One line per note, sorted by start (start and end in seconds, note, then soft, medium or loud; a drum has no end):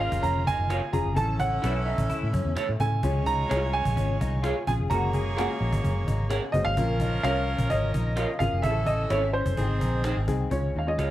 0.00 0.91 C#3 medium
0.00 0.91 A#3 medium
0.00 0.20 C#4 medium
0.00 0.51 C#4 medium
0.00 0.51 F4 medium
0.00 0.91 F4 loud
0.00 0.51 A#4 medium
0.00 0.24 F5 medium
0.00 cajon slap soft
0.12 0.22 F#1 medium
0.12 cajon bass medium
0.22 0.54 F1 loud
0.22 0.41 C#4 medium
0.22 0.47 A#5 loud
0.22 cajon bass medium
0.47 0.66 D#4 medium
0.47 0.90 G#5 loud
0.47 cajon bass loud
0.47 cajon slap soft
0.59 0.79 F#1 medium
0.70 0.80 F4 medium
0.70 0.89 F4 medium
0.70 0.80 A#4 medium
0.70 0.80 C#5 loud
0.70 cajon slap loud
0.93 1.04 F1 medium
0.93 1.12 C#4 medium
0.93 1.12 F4 medium
0.93 1.12 G#4 medium
0.93 1.17 A#5 medium
0.93 cajon bass loud
1.06 1.16 F#1 medium
1.15 1.58 A1 medium
1.15 2.77 E3 medium
1.15 1.53 C#4 medium
1.15 2.77 C#4 medium
1.15 1.53 E4 medium
1.15 1.35 A4 medium
1.15 1.53 A4 medium
1.15 2.77 A4 medium
1.15 1.41 A5 loud
1.15 cajon bass loud
1.39 1.58 C#4 medium
1.39 1.88 F#5 loud
1.39 cajon bass medium
1.51 cajon slap soft
1.62 1.94 B1 medium
1.62 2.37 C#4 medium
1.62 1.81 E4 medium
1.62 1.73 E4 medium
1.62 2.37 E4 medium
1.62 1.73 A4 medium
1.62 2.37 B4 medium
1.62 1.73 C#5 medium
1.62 cajon slap loud
1.85 2.05 D#4 medium
1.85 2.29 E5 medium
1.85 cajon slap soft
1.98 2.08 A1 medium
1.98 cajon bass loud
2.09 2.28 E4 medium
2.09 cajon bass medium
2.23 2.33 A2 medium
2.33 2.44 F#2 medium
2.33 2.52 C#4 medium
2.33 cajon bass loud
2.33 cajon slap soft
2.45 2.55 E2 medium
2.45 cajon slap soft
2.56 3.01 A3 medium
2.56 2.66 E4 loud
2.56 2.67 A4 loud
2.56 2.67 C#5 loud
2.56 muted fingered electric bass stroke soft
2.56 cajon slap loud
2.69 2.79 A2 medium
2.80 3.00 A2 loud
2.80 2.99 C#4 medium
2.80 2.99 E4 medium
2.80 2.99 A4 medium
2.80 3.23 G#5 medium
2.80 cajon bass medium
2.91 cajon slap soft
3.03 3.44 C#2 medium
3.03 4.64 G#3 medium
3.03 3.23 C#4 medium
3.03 3.41 C#4 medium
3.03 3.41 F4 medium
3.03 4.64 F4 medium
3.03 3.40 G#4 medium
3.03 4.64 C#5 medium
3.03 cajon bass loud
3.26 3.46 D#4 medium
3.26 3.75 A#5 loud
3.26 cajon bass medium
3.48 3.81 C2 loud
3.48 3.93 C#4 medium
3.48 4.24 C#4 medium
3.48 3.55 E4 medium
3.48 3.60 F4 medium
3.48 3.60 G#4 medium
3.48 4.25 G#4 medium
3.48 3.60 C#5 loud
3.48 cajon slap loud
3.56 4.27 F4 medium
3.73 4.63 G#5 loud
3.73 cajon slap soft
3.85 3.96 A#1 medium
3.85 cajon bass loud
3.96 4.17 G#1 loud
3.96 4.15 C#4 medium
3.96 cajon bass medium
4.20 4.51 C2 loud
4.20 4.39 D#4 medium
4.20 cajon bass loud
4.20 cajon slap soft
4.42 4.62 F4 medium
4.42 4.54 F4 loud
4.42 4.54 G#4 medium
4.42 4.54 C#5 loud
4.42 cajon slap loud
4.67 4.77 A#1 medium
4.67 4.86 C#4 medium
4.67 4.86 F4 medium
4.67 4.86 G#4 medium
4.67 4.73 G#5 medium
4.67 cajon bass medium
4.80 4.89 F1 medium
4.90 5.46 F#1 loud
4.90 5.28 G#3 medium
4.90 6.51 A#3 medium
4.90 5.28 A#3 medium
4.90 5.28 C#4 medium
4.90 5.09 F#4 medium
4.90 5.28 F#4 medium
4.90 6.51 G#4 medium
4.90 5.28 A#4 medium
4.90 6.51 C#5 medium
4.90 6.26 A#5 medium
4.90 cajon bass loud
5.13 5.33 G#4 medium
5.13 cajon bass medium
5.36 6.12 G#3 medium
5.36 6.12 A#3 medium
5.36 6.12 C#4 medium
5.36 5.56 F4 medium
5.36 6.12 F#4 medium
5.36 5.47 G#4 medium
5.36 6.12 G#4 medium
5.36 5.47 A#4 medium
5.36 5.47 F#5 medium
5.36 cajon slap loud
5.59 5.71 A#1 medium
5.59 5.79 D#4 medium
5.59 cajon slap soft
5.73 5.83 G#1 medium
5.73 cajon bass loud
5.83 6.05 F#1 loud
5.83 6.02 C#4 medium
5.83 cajon bass medium
6.07 6.38 G#1 medium
6.07 6.26 D#4 medium
6.07 cajon bass loud
6.07 cajon slap soft
6.30 6.74 C#4 medium
6.30 6.40 G#4 medium
6.30 6.41 A#4 medium
6.30 6.41 F#5 medium
6.30 cajon slap loud
6.52 6.64 F#1 medium
6.52 6.72 G#3 medium
6.52 6.72 A#3 medium
6.52 6.72 C#4 medium
6.52 6.72 F#4 medium
6.52 6.72 C5 medium
6.52 6.65 D#5 loud
6.52 cajon bass medium
6.65 6.76 G#1 loud
6.65 7.22 F5 loud
6.77 7.18 A#1 loud
6.77 8.38 F3 medium
6.77 6.96 A#3 medium
6.77 8.38 C#4 medium
6.77 7.15 C#4 medium
6.77 7.15 F4 medium
6.77 8.37 A#4 loud
6.77 7.15 A#4 medium
6.77 cajon bass loud
7.00 7.20 D#4 medium
7.00 cajon bass medium
7.23 7.54 C2 medium
7.23 7.67 C#4 medium
7.23 7.99 C#4 medium
7.23 7.34 F4 medium
7.23 7.99 F4 medium
7.23 7.34 A#4 medium
7.23 7.99 A#4 medium
7.23 7.34 C#5 medium
7.23 7.72 F5 loud
7.23 cajon slap loud
7.47 cajon slap soft
7.58 7.69 A#1 medium
7.58 cajon bass loud
7.70 7.91 G#1 loud
7.70 7.89 C#4 medium
7.70 8.36 D#5 loud
7.70 cajon bass medium
7.93 8.25 A#1 medium
7.93 8.13 D#4 medium
7.93 cajon bass loud
7.93 cajon slap soft
8.16 8.27 F4 loud
8.16 8.36 F4 medium
8.16 8.27 A#4 medium
8.16 8.28 C#5 loud
8.16 cajon slap loud
8.39 8.51 G#1 medium
8.39 8.59 C#4 medium
8.39 8.59 F4 medium
8.39 8.59 G#4 medium
8.39 8.59 A#4 medium
8.39 8.64 F5 loud
8.39 cajon bass medium
8.52 8.63 F#1 medium
8.62 9.05 A1 loud
8.62 9.33 E3 medium
8.62 9.33 C#4 medium
8.62 9.02 C#4 medium
8.62 9.02 E4 medium
8.62 8.70 G#4 medium
8.62 8.82 A4 medium
8.62 9.33 A4 medium
8.62 8.87 E5 loud
8.62 cajon bass loud
8.71 9.05 A4 medium
8.85 9.05 A4 medium
8.85 9.11 D#5 loud
8.85 cajon bass medium
8.98 cajon slap soft
9.10 9.41 G#1 medium
9.10 9.17 C4 medium
9.10 9.30 E4 medium
9.10 9.21 E4 medium
9.10 9.58 E4 medium
9.10 9.21 A4 medium
9.10 9.58 A4 medium
9.10 9.35 C#5 medium
9.10 9.21 C#5 medium
9.10 cajon slap loud
9.17 9.61 C#4 medium
9.33 9.53 C#4 medium
9.33 10.00 C5 medium
9.33 cajon slap soft
9.46 9.56 F#1 medium
9.46 cajon bass loud
9.57 9.79 G#1 loud
9.57 10.26 D#3 medium
9.57 10.26 C4 medium
9.57 9.77 C4 medium
9.57 10.14 C4 medium
9.57 10.14 D#4 medium
9.57 10.27 G#4 medium
9.57 10.14 G#4 medium
9.57 cajon bass medium
9.80 10.12 A#1 medium
9.80 10.00 D#4 medium
9.80 cajon bass loud
9.80 cajon slap soft
9.93 cajon slap soft
10.04 10.49 C4 medium
10.04 10.15 D#4 medium
10.04 10.15 G#4 medium
10.04 10.15 C5 loud
10.04 cajon slap loud
10.17 10.27 G#1 medium
10.28 10.49 C2 medium
10.28 10.47 C4 medium
10.28 10.47 D#4 medium
10.28 10.47 G#4 medium
10.28 cajon bass loud
10.39 cajon slap soft
10.51 10.72 C#2 medium
10.51 10.80 G#3 medium
10.51 10.70 C#4 medium
10.51 10.79 C#4 medium
10.51 10.80 F4 medium
10.51 10.79 C#5 medium
10.51 10.81 C#5 medium
10.51 cajon bass loud
10.74 10.96 D#2 medium
10.74 10.95 D#4 medium
10.74 cajon slap soft
10.79 10.86 F5 medium
10.86 11.11 G#3 medium
10.86 11.11 C#4 medium
10.86 11.11 F4 medium
10.86 11.11 C#5 medium
10.86 11.11 D#5 medium
10.98 11.11 C#2 medium
10.98 11.09 F4 medium
10.98 11.11 F4 medium
10.98 11.09 G#4 medium
10.98 11.09 C#5 medium
10.98 cajon slap loud